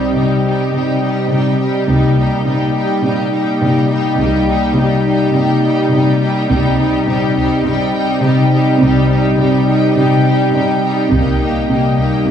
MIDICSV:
0, 0, Header, 1, 8, 480
1, 0, Start_track
1, 0, Key_signature, -3, "minor"
1, 0, Tempo, 576923
1, 1570, Time_signature, 4, 2, 24, 8
1, 10240, End_track
2, 0, Start_track
2, 0, Title_t, "Violin section"
2, 0, Program_c, 0, 48
2, 0, Note_on_c, 0, 67, 34
2, 0, Note_on_c, 0, 79, 32
2, 117, Note_off_c, 0, 67, 0
2, 118, Note_off_c, 0, 79, 0
2, 127, Note_on_c, 0, 67, 37
2, 128, Note_on_c, 0, 79, 32
2, 357, Note_off_c, 0, 79, 0
2, 359, Note_off_c, 0, 67, 0
2, 367, Note_on_c, 0, 79, 35
2, 369, Note_on_c, 0, 67, 36
2, 604, Note_off_c, 0, 67, 0
2, 604, Note_off_c, 0, 79, 0
2, 613, Note_on_c, 0, 67, 39
2, 615, Note_on_c, 0, 79, 39
2, 843, Note_off_c, 0, 67, 0
2, 848, Note_off_c, 0, 79, 0
2, 853, Note_on_c, 0, 67, 34
2, 856, Note_on_c, 0, 79, 36
2, 1079, Note_off_c, 0, 67, 0
2, 1079, Note_off_c, 0, 79, 0
2, 1089, Note_on_c, 0, 67, 35
2, 1089, Note_on_c, 0, 79, 41
2, 1318, Note_off_c, 0, 67, 0
2, 1318, Note_off_c, 0, 79, 0
2, 1328, Note_on_c, 0, 67, 41
2, 1328, Note_on_c, 0, 79, 36
2, 1564, Note_off_c, 0, 67, 0
2, 1564, Note_off_c, 0, 79, 0
2, 1572, Note_on_c, 0, 67, 38
2, 1573, Note_on_c, 0, 79, 40
2, 1803, Note_off_c, 0, 79, 0
2, 1804, Note_off_c, 0, 67, 0
2, 1813, Note_on_c, 0, 79, 38
2, 1814, Note_on_c, 0, 67, 35
2, 2037, Note_off_c, 0, 67, 0
2, 2038, Note_off_c, 0, 79, 0
2, 2047, Note_on_c, 0, 67, 41
2, 2048, Note_on_c, 0, 79, 41
2, 2275, Note_off_c, 0, 67, 0
2, 2278, Note_off_c, 0, 79, 0
2, 2285, Note_on_c, 0, 67, 40
2, 2288, Note_on_c, 0, 79, 41
2, 2514, Note_off_c, 0, 79, 0
2, 2516, Note_off_c, 0, 67, 0
2, 2524, Note_on_c, 0, 79, 40
2, 2526, Note_on_c, 0, 67, 46
2, 2758, Note_off_c, 0, 79, 0
2, 2760, Note_off_c, 0, 67, 0
2, 2768, Note_on_c, 0, 79, 39
2, 2770, Note_on_c, 0, 67, 39
2, 3001, Note_off_c, 0, 79, 0
2, 3002, Note_off_c, 0, 67, 0
2, 3011, Note_on_c, 0, 79, 45
2, 3012, Note_on_c, 0, 67, 40
2, 3235, Note_off_c, 0, 67, 0
2, 3235, Note_off_c, 0, 79, 0
2, 3245, Note_on_c, 0, 67, 42
2, 3245, Note_on_c, 0, 79, 42
2, 3479, Note_off_c, 0, 79, 0
2, 3482, Note_off_c, 0, 67, 0
2, 3489, Note_on_c, 0, 79, 47
2, 3492, Note_on_c, 0, 67, 49
2, 3722, Note_off_c, 0, 79, 0
2, 3726, Note_off_c, 0, 67, 0
2, 3732, Note_on_c, 0, 79, 41
2, 3735, Note_on_c, 0, 67, 42
2, 3966, Note_off_c, 0, 79, 0
2, 3967, Note_off_c, 0, 67, 0
2, 3976, Note_on_c, 0, 79, 43
2, 3977, Note_on_c, 0, 67, 43
2, 4204, Note_off_c, 0, 67, 0
2, 4204, Note_off_c, 0, 79, 0
2, 4213, Note_on_c, 0, 79, 45
2, 4214, Note_on_c, 0, 67, 47
2, 4442, Note_off_c, 0, 67, 0
2, 4443, Note_off_c, 0, 79, 0
2, 4452, Note_on_c, 0, 67, 49
2, 4453, Note_on_c, 0, 79, 52
2, 4681, Note_off_c, 0, 79, 0
2, 4683, Note_off_c, 0, 67, 0
2, 4691, Note_on_c, 0, 79, 44
2, 4693, Note_on_c, 0, 67, 45
2, 4922, Note_off_c, 0, 67, 0
2, 4922, Note_off_c, 0, 79, 0
2, 4932, Note_on_c, 0, 67, 46
2, 4932, Note_on_c, 0, 79, 44
2, 5163, Note_off_c, 0, 67, 0
2, 5164, Note_off_c, 0, 79, 0
2, 5173, Note_on_c, 0, 67, 48
2, 5174, Note_on_c, 0, 79, 47
2, 5396, Note_off_c, 0, 67, 0
2, 5398, Note_off_c, 0, 79, 0
2, 5406, Note_on_c, 0, 67, 50
2, 5408, Note_on_c, 0, 79, 52
2, 5641, Note_off_c, 0, 67, 0
2, 5642, Note_off_c, 0, 79, 0
2, 5651, Note_on_c, 0, 67, 47
2, 5652, Note_on_c, 0, 79, 45
2, 5881, Note_off_c, 0, 79, 0
2, 5882, Note_off_c, 0, 67, 0
2, 5891, Note_on_c, 0, 79, 44
2, 5892, Note_on_c, 0, 67, 49
2, 6120, Note_off_c, 0, 67, 0
2, 6125, Note_off_c, 0, 79, 0
2, 6130, Note_on_c, 0, 67, 48
2, 6134, Note_on_c, 0, 79, 46
2, 6357, Note_off_c, 0, 79, 0
2, 6359, Note_off_c, 0, 67, 0
2, 6367, Note_on_c, 0, 79, 51
2, 6369, Note_on_c, 0, 67, 46
2, 6596, Note_off_c, 0, 67, 0
2, 6596, Note_off_c, 0, 79, 0
2, 6606, Note_on_c, 0, 67, 50
2, 6606, Note_on_c, 0, 79, 46
2, 6838, Note_off_c, 0, 67, 0
2, 6838, Note_off_c, 0, 79, 0
2, 6848, Note_on_c, 0, 67, 51
2, 6848, Note_on_c, 0, 79, 48
2, 7084, Note_off_c, 0, 67, 0
2, 7084, Note_off_c, 0, 79, 0
2, 7093, Note_on_c, 0, 79, 45
2, 7095, Note_on_c, 0, 67, 47
2, 7326, Note_off_c, 0, 79, 0
2, 7327, Note_off_c, 0, 67, 0
2, 7336, Note_on_c, 0, 67, 49
2, 7337, Note_on_c, 0, 79, 48
2, 7561, Note_off_c, 0, 67, 0
2, 7565, Note_off_c, 0, 79, 0
2, 7571, Note_on_c, 0, 67, 42
2, 7575, Note_on_c, 0, 79, 40
2, 7795, Note_off_c, 0, 67, 0
2, 7797, Note_off_c, 0, 79, 0
2, 7805, Note_on_c, 0, 67, 43
2, 7807, Note_on_c, 0, 79, 42
2, 8035, Note_off_c, 0, 67, 0
2, 8038, Note_off_c, 0, 79, 0
2, 8045, Note_on_c, 0, 67, 42
2, 8048, Note_on_c, 0, 79, 47
2, 8272, Note_off_c, 0, 79, 0
2, 8273, Note_off_c, 0, 67, 0
2, 8282, Note_on_c, 0, 79, 50
2, 8283, Note_on_c, 0, 67, 50
2, 8521, Note_off_c, 0, 67, 0
2, 8521, Note_off_c, 0, 79, 0
2, 8530, Note_on_c, 0, 79, 42
2, 8531, Note_on_c, 0, 67, 43
2, 8755, Note_off_c, 0, 67, 0
2, 8756, Note_off_c, 0, 79, 0
2, 8765, Note_on_c, 0, 67, 45
2, 8766, Note_on_c, 0, 79, 47
2, 8996, Note_off_c, 0, 67, 0
2, 8996, Note_off_c, 0, 79, 0
2, 9006, Note_on_c, 0, 67, 44
2, 9006, Note_on_c, 0, 79, 42
2, 9238, Note_off_c, 0, 67, 0
2, 9239, Note_off_c, 0, 79, 0
2, 9248, Note_on_c, 0, 67, 45
2, 9249, Note_on_c, 0, 79, 47
2, 9479, Note_off_c, 0, 67, 0
2, 9479, Note_off_c, 0, 79, 0
2, 9489, Note_on_c, 0, 67, 41
2, 9489, Note_on_c, 0, 79, 37
2, 9720, Note_off_c, 0, 79, 0
2, 9722, Note_off_c, 0, 67, 0
2, 9730, Note_on_c, 0, 79, 37
2, 9732, Note_on_c, 0, 67, 39
2, 9957, Note_off_c, 0, 67, 0
2, 9959, Note_off_c, 0, 79, 0
2, 9967, Note_on_c, 0, 67, 37
2, 9969, Note_on_c, 0, 79, 42
2, 10193, Note_off_c, 0, 67, 0
2, 10195, Note_off_c, 0, 79, 0
2, 10203, Note_on_c, 0, 67, 39
2, 10205, Note_on_c, 0, 79, 39
2, 10240, Note_off_c, 0, 67, 0
2, 10240, Note_off_c, 0, 79, 0
2, 10240, End_track
3, 0, Start_track
3, 0, Title_t, "Analog synth pad"
3, 0, Program_c, 1, 89
3, 0, Note_on_c, 1, 55, 60
3, 0, Note_on_c, 1, 60, 57
3, 0, Note_on_c, 1, 67, 56
3, 0, Note_on_c, 1, 75, 60
3, 1539, Note_off_c, 1, 55, 0
3, 1540, Note_off_c, 1, 67, 0
3, 1540, Note_off_c, 1, 75, 0
3, 1541, Note_off_c, 1, 60, 0
3, 1566, Note_on_c, 1, 55, 59
3, 1566, Note_on_c, 1, 75, 64
3, 1568, Note_on_c, 1, 58, 62
3, 1568, Note_on_c, 1, 67, 59
3, 5375, Note_off_c, 1, 55, 0
3, 5375, Note_off_c, 1, 67, 0
3, 5375, Note_off_c, 1, 75, 0
3, 5404, Note_on_c, 1, 67, 63
3, 5406, Note_on_c, 1, 55, 65
3, 5407, Note_on_c, 1, 75, 63
3, 5408, Note_on_c, 1, 60, 66
3, 5409, Note_off_c, 1, 58, 0
3, 9214, Note_off_c, 1, 67, 0
3, 9215, Note_off_c, 1, 55, 0
3, 9215, Note_off_c, 1, 75, 0
3, 9246, Note_on_c, 1, 67, 63
3, 9246, Note_on_c, 1, 75, 64
3, 9248, Note_on_c, 1, 55, 66
3, 9249, Note_off_c, 1, 60, 0
3, 9253, Note_on_c, 1, 58, 62
3, 10240, Note_off_c, 1, 55, 0
3, 10240, Note_off_c, 1, 58, 0
3, 10240, Note_off_c, 1, 67, 0
3, 10240, Note_off_c, 1, 75, 0
3, 10240, End_track
4, 0, Start_track
4, 0, Title_t, "Viola section"
4, 0, Program_c, 2, 48
4, 0, Note_on_c, 2, 55, 33
4, 0, Note_on_c, 2, 63, 31
4, 122, Note_off_c, 2, 55, 0
4, 123, Note_off_c, 2, 63, 0
4, 132, Note_on_c, 2, 55, 36
4, 133, Note_on_c, 2, 63, 36
4, 366, Note_off_c, 2, 55, 0
4, 367, Note_off_c, 2, 63, 0
4, 378, Note_on_c, 2, 63, 32
4, 379, Note_on_c, 2, 55, 32
4, 601, Note_off_c, 2, 55, 0
4, 601, Note_off_c, 2, 63, 0
4, 611, Note_on_c, 2, 55, 36
4, 611, Note_on_c, 2, 63, 36
4, 839, Note_off_c, 2, 55, 0
4, 839, Note_off_c, 2, 63, 0
4, 849, Note_on_c, 2, 55, 35
4, 849, Note_on_c, 2, 63, 35
4, 1077, Note_off_c, 2, 55, 0
4, 1078, Note_off_c, 2, 63, 0
4, 1087, Note_on_c, 2, 55, 38
4, 1088, Note_on_c, 2, 63, 34
4, 1321, Note_off_c, 2, 55, 0
4, 1321, Note_off_c, 2, 63, 0
4, 1331, Note_on_c, 2, 55, 38
4, 1331, Note_on_c, 2, 63, 36
4, 1558, Note_off_c, 2, 55, 0
4, 1559, Note_off_c, 2, 63, 0
4, 1568, Note_on_c, 2, 55, 43
4, 1569, Note_on_c, 2, 63, 45
4, 1800, Note_off_c, 2, 63, 0
4, 1801, Note_off_c, 2, 55, 0
4, 1810, Note_on_c, 2, 63, 38
4, 1811, Note_on_c, 2, 55, 36
4, 2036, Note_off_c, 2, 63, 0
4, 2037, Note_off_c, 2, 55, 0
4, 2046, Note_on_c, 2, 63, 39
4, 2047, Note_on_c, 2, 55, 40
4, 2275, Note_off_c, 2, 63, 0
4, 2276, Note_off_c, 2, 55, 0
4, 2285, Note_on_c, 2, 63, 34
4, 2286, Note_on_c, 2, 55, 39
4, 2513, Note_off_c, 2, 55, 0
4, 2514, Note_off_c, 2, 63, 0
4, 2523, Note_on_c, 2, 55, 41
4, 2524, Note_on_c, 2, 63, 41
4, 2756, Note_off_c, 2, 55, 0
4, 2756, Note_off_c, 2, 63, 0
4, 2766, Note_on_c, 2, 55, 40
4, 2766, Note_on_c, 2, 63, 41
4, 2996, Note_off_c, 2, 63, 0
4, 2997, Note_off_c, 2, 55, 0
4, 3006, Note_on_c, 2, 63, 42
4, 3007, Note_on_c, 2, 55, 42
4, 3233, Note_off_c, 2, 55, 0
4, 3233, Note_off_c, 2, 63, 0
4, 3243, Note_on_c, 2, 55, 44
4, 3243, Note_on_c, 2, 63, 44
4, 3474, Note_off_c, 2, 55, 0
4, 3475, Note_off_c, 2, 63, 0
4, 3484, Note_on_c, 2, 55, 52
4, 3485, Note_on_c, 2, 63, 49
4, 3715, Note_off_c, 2, 55, 0
4, 3715, Note_off_c, 2, 63, 0
4, 3725, Note_on_c, 2, 55, 43
4, 3725, Note_on_c, 2, 63, 45
4, 3954, Note_off_c, 2, 55, 0
4, 3956, Note_off_c, 2, 63, 0
4, 3964, Note_on_c, 2, 55, 47
4, 3966, Note_on_c, 2, 63, 44
4, 4197, Note_off_c, 2, 55, 0
4, 4198, Note_off_c, 2, 63, 0
4, 4207, Note_on_c, 2, 55, 41
4, 4208, Note_on_c, 2, 63, 42
4, 4433, Note_off_c, 2, 63, 0
4, 4435, Note_off_c, 2, 55, 0
4, 4443, Note_on_c, 2, 63, 42
4, 4445, Note_on_c, 2, 55, 46
4, 4678, Note_off_c, 2, 55, 0
4, 4679, Note_off_c, 2, 63, 0
4, 4688, Note_on_c, 2, 55, 43
4, 4689, Note_on_c, 2, 63, 49
4, 4915, Note_off_c, 2, 55, 0
4, 4916, Note_off_c, 2, 63, 0
4, 4925, Note_on_c, 2, 55, 46
4, 4926, Note_on_c, 2, 63, 46
4, 5156, Note_off_c, 2, 63, 0
4, 5157, Note_off_c, 2, 55, 0
4, 5166, Note_on_c, 2, 63, 45
4, 5167, Note_on_c, 2, 55, 50
4, 5395, Note_off_c, 2, 63, 0
4, 5397, Note_off_c, 2, 55, 0
4, 5405, Note_on_c, 2, 63, 56
4, 5407, Note_on_c, 2, 55, 54
4, 5634, Note_off_c, 2, 55, 0
4, 5635, Note_off_c, 2, 63, 0
4, 5644, Note_on_c, 2, 55, 45
4, 5645, Note_on_c, 2, 63, 44
4, 5875, Note_off_c, 2, 55, 0
4, 5876, Note_off_c, 2, 63, 0
4, 5885, Note_on_c, 2, 55, 50
4, 5886, Note_on_c, 2, 63, 45
4, 6123, Note_off_c, 2, 55, 0
4, 6123, Note_off_c, 2, 63, 0
4, 6133, Note_on_c, 2, 55, 47
4, 6135, Note_on_c, 2, 63, 45
4, 6363, Note_off_c, 2, 55, 0
4, 6363, Note_off_c, 2, 63, 0
4, 6373, Note_on_c, 2, 55, 46
4, 6373, Note_on_c, 2, 63, 45
4, 6597, Note_off_c, 2, 55, 0
4, 6598, Note_off_c, 2, 63, 0
4, 6607, Note_on_c, 2, 55, 49
4, 6608, Note_on_c, 2, 63, 48
4, 6836, Note_off_c, 2, 63, 0
4, 6838, Note_off_c, 2, 55, 0
4, 6846, Note_on_c, 2, 63, 45
4, 6848, Note_on_c, 2, 55, 42
4, 7083, Note_off_c, 2, 63, 0
4, 7084, Note_off_c, 2, 55, 0
4, 7093, Note_on_c, 2, 55, 47
4, 7093, Note_on_c, 2, 63, 42
4, 7319, Note_off_c, 2, 63, 0
4, 7320, Note_off_c, 2, 55, 0
4, 7329, Note_on_c, 2, 63, 54
4, 7330, Note_on_c, 2, 55, 54
4, 7560, Note_off_c, 2, 55, 0
4, 7560, Note_off_c, 2, 63, 0
4, 7570, Note_on_c, 2, 55, 45
4, 7570, Note_on_c, 2, 63, 45
4, 7797, Note_off_c, 2, 63, 0
4, 7798, Note_off_c, 2, 55, 0
4, 7807, Note_on_c, 2, 63, 46
4, 7808, Note_on_c, 2, 55, 48
4, 8043, Note_off_c, 2, 63, 0
4, 8044, Note_off_c, 2, 55, 0
4, 8055, Note_on_c, 2, 55, 45
4, 8055, Note_on_c, 2, 63, 42
4, 8280, Note_off_c, 2, 55, 0
4, 8281, Note_off_c, 2, 63, 0
4, 8290, Note_on_c, 2, 55, 44
4, 8291, Note_on_c, 2, 63, 44
4, 8522, Note_off_c, 2, 63, 0
4, 8525, Note_off_c, 2, 55, 0
4, 8532, Note_on_c, 2, 63, 42
4, 8534, Note_on_c, 2, 55, 42
4, 8758, Note_off_c, 2, 63, 0
4, 8760, Note_off_c, 2, 55, 0
4, 8768, Note_on_c, 2, 63, 40
4, 8770, Note_on_c, 2, 55, 40
4, 8995, Note_off_c, 2, 63, 0
4, 8996, Note_off_c, 2, 55, 0
4, 9005, Note_on_c, 2, 63, 40
4, 9006, Note_on_c, 2, 55, 44
4, 9243, Note_off_c, 2, 55, 0
4, 9243, Note_off_c, 2, 63, 0
4, 9251, Note_on_c, 2, 58, 49
4, 9253, Note_on_c, 2, 63, 50
4, 9479, Note_off_c, 2, 63, 0
4, 9480, Note_off_c, 2, 58, 0
4, 9489, Note_on_c, 2, 63, 39
4, 9490, Note_on_c, 2, 58, 40
4, 9716, Note_off_c, 2, 63, 0
4, 9718, Note_off_c, 2, 58, 0
4, 9726, Note_on_c, 2, 63, 42
4, 9728, Note_on_c, 2, 58, 42
4, 9959, Note_off_c, 2, 58, 0
4, 9959, Note_off_c, 2, 63, 0
4, 9969, Note_on_c, 2, 58, 38
4, 9969, Note_on_c, 2, 63, 33
4, 10197, Note_off_c, 2, 63, 0
4, 10199, Note_off_c, 2, 58, 0
4, 10207, Note_on_c, 2, 63, 36
4, 10209, Note_on_c, 2, 58, 38
4, 10240, Note_off_c, 2, 58, 0
4, 10240, Note_off_c, 2, 63, 0
4, 10240, End_track
5, 0, Start_track
5, 0, Title_t, "French horn section"
5, 0, Program_c, 3, 60
5, 0, Note_on_c, 3, 55, 39
5, 0, Note_on_c, 3, 63, 41
5, 1533, Note_off_c, 3, 55, 0
5, 1533, Note_off_c, 3, 63, 0
5, 1575, Note_on_c, 3, 55, 46
5, 1577, Note_on_c, 3, 63, 47
5, 5264, Note_off_c, 3, 55, 0
5, 5264, Note_off_c, 3, 63, 0
5, 5405, Note_on_c, 3, 63, 59
5, 5408, Note_on_c, 3, 55, 60
5, 9214, Note_off_c, 3, 63, 0
5, 9216, Note_off_c, 3, 55, 0
5, 9241, Note_on_c, 3, 63, 54
5, 9243, Note_on_c, 3, 55, 54
5, 10240, Note_off_c, 3, 55, 0
5, 10240, Note_off_c, 3, 63, 0
5, 10240, End_track
6, 0, Start_track
6, 0, Title_t, "Cello section"
6, 0, Program_c, 4, 48
6, 131, Note_on_c, 4, 48, 45
6, 532, Note_off_c, 4, 48, 0
6, 607, Note_on_c, 4, 48, 48
6, 1010, Note_off_c, 4, 48, 0
6, 1088, Note_on_c, 4, 48, 45
6, 1491, Note_off_c, 4, 48, 0
6, 1567, Note_on_c, 4, 48, 53
6, 1970, Note_off_c, 4, 48, 0
6, 2049, Note_on_c, 4, 48, 50
6, 2451, Note_off_c, 4, 48, 0
6, 2530, Note_on_c, 4, 48, 52
6, 2932, Note_off_c, 4, 48, 0
6, 3011, Note_on_c, 4, 48, 56
6, 3412, Note_off_c, 4, 48, 0
6, 3484, Note_on_c, 4, 48, 62
6, 3888, Note_off_c, 4, 48, 0
6, 3962, Note_on_c, 4, 48, 61
6, 4367, Note_off_c, 4, 48, 0
6, 4445, Note_on_c, 4, 48, 57
6, 4849, Note_off_c, 4, 48, 0
6, 4928, Note_on_c, 4, 48, 59
6, 5330, Note_off_c, 4, 48, 0
6, 5406, Note_on_c, 4, 48, 62
6, 5810, Note_off_c, 4, 48, 0
6, 5888, Note_on_c, 4, 48, 57
6, 6291, Note_off_c, 4, 48, 0
6, 6368, Note_on_c, 4, 48, 63
6, 6771, Note_off_c, 4, 48, 0
6, 6846, Note_on_c, 4, 48, 64
6, 7249, Note_off_c, 4, 48, 0
6, 7329, Note_on_c, 4, 48, 59
6, 7731, Note_off_c, 4, 48, 0
6, 7810, Note_on_c, 4, 48, 58
6, 8212, Note_off_c, 4, 48, 0
6, 8286, Note_on_c, 4, 48, 55
6, 8690, Note_off_c, 4, 48, 0
6, 8766, Note_on_c, 4, 48, 57
6, 9170, Note_off_c, 4, 48, 0
6, 9247, Note_on_c, 4, 48, 58
6, 9650, Note_off_c, 4, 48, 0
6, 9729, Note_on_c, 4, 48, 50
6, 10131, Note_off_c, 4, 48, 0
6, 10209, Note_on_c, 4, 48, 46
6, 10240, Note_off_c, 4, 48, 0
6, 10240, End_track
7, 0, Start_track
7, 0, Title_t, "Double bass section"
7, 0, Program_c, 5, 48
7, 1566, Note_on_c, 5, 36, 51
7, 1970, Note_off_c, 5, 36, 0
7, 3487, Note_on_c, 5, 36, 58
7, 3890, Note_off_c, 5, 36, 0
7, 5408, Note_on_c, 5, 36, 59
7, 5811, Note_off_c, 5, 36, 0
7, 7329, Note_on_c, 5, 36, 61
7, 7731, Note_off_c, 5, 36, 0
7, 9248, Note_on_c, 5, 36, 55
7, 9650, Note_off_c, 5, 36, 0
7, 10240, End_track
8, 0, Start_track
8, 0, Title_t, "Taiko and cinematic ensemble drums"
8, 1570, Note_on_c, 9, 41, 43
8, 1653, Note_off_c, 9, 41, 0
8, 5412, Note_on_c, 9, 41, 51
8, 5495, Note_off_c, 9, 41, 0
8, 6133, Note_on_c, 9, 41, 31
8, 6216, Note_off_c, 9, 41, 0
8, 9250, Note_on_c, 9, 41, 55
8, 9333, Note_off_c, 9, 41, 0
8, 9971, Note_on_c, 9, 41, 30
8, 10054, Note_off_c, 9, 41, 0
8, 10240, End_track
0, 0, End_of_file